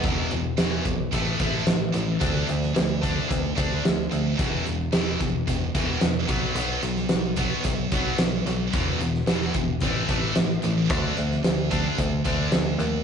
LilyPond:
<<
  \new Staff \with { instrumentName = "Distorted electric guitar" } { \clef bass \time 4/4 \key d \lydian \tempo 4 = 110 <e, b, e>8 <e, b,>8 <e, b, e>8 <e, b,>8 <a, e a>8 <a, e a>8 <a, e>8 <a, e>8 | <d a d'>8 <d a>8 <d a>8 <d a d'>8 <d a>8 <d a d'>8 <d a>8 <d a>8 | <e, b, e>8 <e, b,>8 <e, b, e>8 <e, b,>8 <e, b,>8 <e, b, e>8 <e, b,>8 <b, fis b>8 | <b, fis b>8 <b, fis>8 <b, fis>8 <b, fis b>8 <b, fis>8 <b, fis b>8 <b, fis>8 <b, fis>8 |
<e, b, e>8 <e, b,>8 <e, b, e>8 <e, b,>8 <a, e a>8 <a, e a>8 <a, e>8 <a, e>8 | <d a d'>8 <d a>8 <d a>8 <d a d'>8 <d a>8 <d a d'>8 <d a>8 <d a>8 | }
  \new Staff \with { instrumentName = "Distorted electric guitar" } { \clef bass \time 4/4 \key d \lydian <e, b, e>8 <e, b,>8 <e, b, e>8 <e, b,>8 <a, e a>8 <a, e a>8 <a, e>8 <a, e>8 | <d a d'>8 <d a>8 <d a>8 <d a d'>8 <d a>8 <d a d'>8 <d a>8 <d a>8 | <e, b, e>8 <e, b,>8 <e, b, e>8 <e, b,>8 <e, b,>8 <e, b, e>8 <e, b,>8 <b, fis b>8 | <b, fis b>8 <b, fis>8 <b, fis>8 <b, fis b>8 <b, fis>8 <b, fis b>8 <b, fis>8 <b, fis>8 |
<e, b, e>8 <e, b,>8 <e, b, e>8 <e, b,>8 <a, e a>8 <a, e a>8 <a, e>8 <a, e>8 | <d a d'>8 <d a>8 <d a>8 <d a d'>8 <d a>8 <d a d'>8 <d a>8 <d a>8 | }
  \new Staff \with { instrumentName = "Picked electric bass" } { \clef bass \time 4/4 \key d \lydian e,,8 e,,8 e,,8 b,,8 a,,8 a,,8 a,,8 a,,8 | d,8 d,8 d,4 d,8 d,8 d,8 d,8 | e,,8 e,,8 e,,8 e,,8 e,,8 e,,8 e,,8 b,,8 | b,,8 b,,8 b,,4 b,,8 b,,8 b,,8 b,,8 |
e,,8 e,,8 e,,8 e,,8 a,,8 a,,8 a,,8 a,,8 | d,8 d,8 d,4 d,8 d,8 d,8 dis,8 | }
  \new DrumStaff \with { instrumentName = "Drums" } \drummode { \time 4/4 <hh bd>8 hh8 <hh sn>8 <hh bd>8 <hh bd>8 <hh bd>8 <hh sn>8 hh8 | <hh bd>8 hh16 sn16 <hh sn>8 <hh bd>8 <hh bd>8 <hh bd>8 <hh sn>8 hh8 | <hh bd>8 hh8 <hh sn>8 <hh bd>8 <hh bd>8 <hh bd>8 <hh sn>8 <hh bd>8 | hh8 hh16 sn16 <hh sn>8 <hh bd>8 <hh bd>8 <hh bd>8 <hh sn>8 hh8 |
<hh bd>8 hh16 sn16 <hh sn>16 sn16 <hh bd>8 <hh bd>8 <hh bd>8 <hh sn>8 hh8 | <hh bd>8 hh16 sn16 <hh sn>8 <hh bd>8 <hh bd>8 <hh bd>8 <hh sn>8 hh8 | }
>>